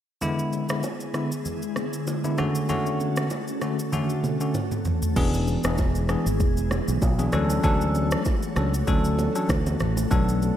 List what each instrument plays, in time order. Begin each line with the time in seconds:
0.21 tine electric piano D3 G#3 B3 E4, ambient pad D3 G#3 B3 E4 G#4, low conga, shaker
0.39 shaker
0.53 low bongo, shaker
0.69 tine electric piano D3 G#3 B3 E4, cross-stick, low bongo, shaker
0.83 high bongo, shaker
1.00 shaker
1.14 tine electric piano D3 G#3 B3 E4, cross-stick, shaker
1.32 shaker
1.45 low conga, shaker
1.62 shaker
1.76 cross-stick, high bongo, low bongo, shaker
1.93 shaker
2.07 high bongo, shaker
2.24 tine electric piano D3 G#3 B3 E4, low bongo, shaker
2.38 tine electric piano D3 A3 C#4 F#4, ambient pad A3 C#4 F#4 A4, cross-stick, low conga, shaker
2.55 shaker
2.69 tine electric piano D3 A3 C#4 F#4, low conga, shaker
2.86 shaker
3.00 low bongo, shaker
3.16 cross-stick, low bongo, shaker
3.30 high bongo, shaker
3.48 shaker
3.61 tine electric piano D3 A3 C#4 F#4, cross-stick, shaker
3.79 shaker
3.93 tine electric piano D3 A3 C#4 F#4, high tom, low conga, shaker
4.10 shaker
4.24 mid tom, high bongo, low bongo, shaker
4.40 tine electric piano D3 A3 C#4 F#4, shaker
4.54 mid tom, high bongo, shaker
4.72 mid tom, low bongo, shaker
4.85 floor tom, low conga, shaker
5.02 floor tom, shaker
5.16 fingered electric bass E1, tine electric piano E3 B3 D4 G#4, ambient pad E3 G#3 B3 E4 G#4, kick, crash, low conga, shaker
5.34 shaker
5.48 low bongo, shaker
5.64 fingered electric bass E1, tine electric piano E3 B3 D4 G#4, cross-stick, shaker
5.78 kick, high bongo, shaker
5.95 shaker
6.09 tine electric piano E3 B3 D4 G#4, cross-stick, shaker
6.26 fingered electric bass G#1, shaker
6.40 fingered electric bass E1, kick, low conga, shaker
6.57 shaker
6.71 cross-stick, high bongo, low bongo, shaker
6.88 fingered electric bass B1, shaker
7.02 fingered electric bass B1, kick, high bongo, shaker
7.19 tine electric piano E3 B3 D4 G#4, low bongo, shaker
7.32 fingered electric bass D2, tine electric piano F#3 C#4 D4 A4, ambient pad A3 F#4 A4 C#5, cross-stick, low conga, shaker
7.50 high bongo, shaker
7.63 fingered electric bass D2, tine electric piano F#3 C#4 D4 A4, kick, low conga, shaker
7.81 shaker
7.95 low bongo, shaker
8.11 cross-stick, shaker
8.25 kick, high bongo, shaker
8.42 shaker
8.56 fingered electric bass C#2, tine electric piano F#3 C#4 D4 A4, cross-stick, shaker
8.74 shaker
8.87 fingered electric bass D2, tine electric piano F#3 C#4 D4 A4, kick, low conga, shaker
9.04 shaker
9.19 high bongo, low bongo, shaker
9.35 tine electric piano F#3 C#4 D4 A4, shaker
9.49 fingered electric bass D2, kick, cross-stick, high bongo, shaker
9.66 low bongo, shaker
9.80 fingered electric bass A1, cross-stick, low conga, shaker
9.97 high bongo, shaker
10.11 fingered electric bass B1, tine electric piano F#3 B3 D4 A4, ambient pad B3, kick, low conga, shaker
10.29 shaker
10.42 low bongo, shaker